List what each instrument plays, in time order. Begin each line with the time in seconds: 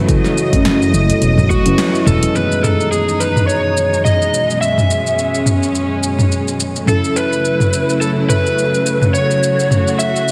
Already playing: string section C#3 F#3 A3
0.08 analog synth bass F#1, synth keys F#3 C#4 E4 A4, handpan F#3, string section D#5, kick, closed hi-hat, shaker
0.24 handpan F#3, snare, shaker
0.36 handpan A3, shaker
0.51 analog synth bass F#2, synth keys F#3 C#4 E4, handpan A3, kick, closed hi-hat, shaker
0.55 synth keys A4
0.65 handpan F#3, snare, closed hi-hat, mid tom, shaker
0.81 handpan E4, shaker
0.93 analog synth bass F#1, handpan F#3, shaker
1.09 handpan A3, closed hi-hat, udu, shaker
1.22 analog synth bass E1, handpan F#3, closed hi-hat, shaker
1.38 handpan F#3, mid tom, udu, shaker
1.50 handpan A3, electric slide guitar F#4, kick, shaker
1.64 analog synth bass F#1, synth keys F#3 C#4 E4 B4, handpan C#4, closed hi-hat, shaker
1.78 handpan F#3, snare, closed hi-hat, shaker
1.94 handpan E4, shaker
2.06 analog synth bass E1, handpan G#3, electric slide guitar A4, mid tom, udu, shaker
2.22 handpan C#4, closed hi-hat, shaker
2.33 synth keys F#2 D#3 E3 B3, string section F#2 B2 G#3 D#4, electric slide guitar B4, shaker
2.37 synth keys G#4
2.52 shaker
2.63 electric slide guitar A4, mid tom, shaker
2.81 shaker
2.91 electric slide guitar G#4, shaker
3.09 shaker
3.20 electric slide guitar B4, shaker
3.36 mid tom, shaker
3.47 electric slide guitar C#5, shaker
3.77 shaker
3.94 shaker
4.05 electric slide guitar D#5, mid tom, shaker
4.22 shaker
4.34 shaker
4.50 shaker
4.61 string section C#4, electric slide guitar E5, shaker
4.78 mid tom, shaker
4.91 shaker
5.07 shaker
5.19 shaker
5.35 shaker
5.46 mid tom, shaker
5.63 shaker
5.75 shaker
6.03 shaker
6.19 mid tom, shaker
6.32 shaker
6.48 shaker
6.60 shaker
6.76 shaker
6.86 string section C#3 F#3 A3 E4, synth keys F#3 C#4 E4, electric slide guitar A4, mid tom, shaker
6.90 synth keys A4
7.04 shaker
7.16 electric slide guitar B4, shaker
7.33 shaker
7.45 shaker
7.60 mid tom, shaker
7.73 shaker
7.90 shaker
8.01 electric slide guitar A4, shaker
8.29 electric slide guitar B4, mid tom, shaker
8.46 shaker
8.59 shaker
8.74 shaker
8.86 shaker
9.02 mid tom, shaker
9.14 string section F#4, electric slide guitar C#5, shaker
9.31 shaker
9.43 shaker
9.60 shaker
9.71 mid tom, shaker
9.88 shaker
9.99 electric slide guitar E5, shaker
10.16 shaker
10.28 shaker